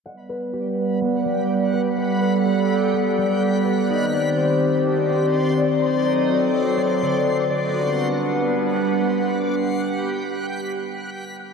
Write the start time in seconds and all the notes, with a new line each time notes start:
0.06 G3 B3 G4 B4 D5 F#5 B5
0.29 B4
0.53 G4
1.01 B3
1.25 G3
1.73 B4
1.97 A4 F#5
2.21 B4
2.46 G4
2.93 B3
3.18 G3
3.65 B4
3.89 D#3 C4 D#4 G4 C5 D5 C6
4.13 D5
4.37 C5
4.86 D4
5.10 C4
5.57 D5
5.81 F#3 C4 F#4 A4 C6
6.06 D5
6.30 F#4
6.77 C4
7.02 D3
7.50 D5
7.68 B3
7.73 G3 B3 D4 F#4 G4 B4 F#5 B5
7.80 G4